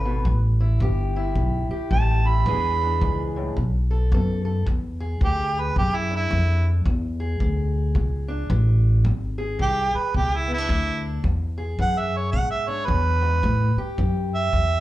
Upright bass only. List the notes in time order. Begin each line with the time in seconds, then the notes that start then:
Already playing: G#1
0.25 A1
0.81 G1
1.36 B1
1.69 muted upright bass stroke
1.91 A1
2.46 E2
3.02 C#2
3.57 B1
4.12 F#2
4.67 E2
5.21 D2
5.76 F#2
6.31 F2
6.86 E2
7.41 D2
7.95 C#2
8.50 A1
9.05 G#1
9.59 C2
9.94 muted upright bass stroke
10.15 C#2
10.69 D2
11.24 E2
11.79 F#2
12.34 G#2
12.88 E2
13.44 A2
13.76 muted upright bass stroke
13.99 F#2
14.53 E2